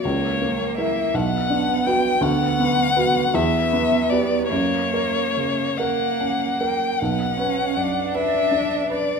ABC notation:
X:1
M:6/8
L:1/16
Q:3/8=53
K:Bm
V:1 name="Violin"
c4 e2 f4 g2 | f6 e4 d2 | c6 f4 g2 | f6 e4 d2 |]
V:2 name="Grand piano"
C,,2 ^A,2 [E^A]2 B,,,2 D2 [FB]2 | D,,2 B,2 [FB]2 E,,2 B,2 [GB]2 | F,,2 ^A2 C,2 A2 C2 A2 | B,,,2 B2 F,,2 B2 D2 B2 |]
V:3 name="Cello"
^A,6 B,6 | B,6 B,6 | ^A,6 A,4- A, z | B,2 C2 D8 |]